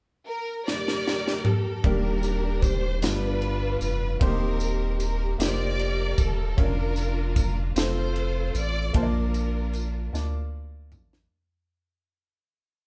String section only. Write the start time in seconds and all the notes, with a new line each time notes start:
0.27 A#4
0.65 G4 A#4 D5
1.46 A4
1.86 D4 G4 A#4
2.63 C5
3.04 D4 F4 B4
3.83 B4
4.24 G4 A#4
5.01 A#4
5.42 G4 A#4 D5
6.20 A4
6.60 D4 F4 A#4
7.38 A#4
7.79 F4 A4 C5
8.58 D5
8.97 D4 F4 A#4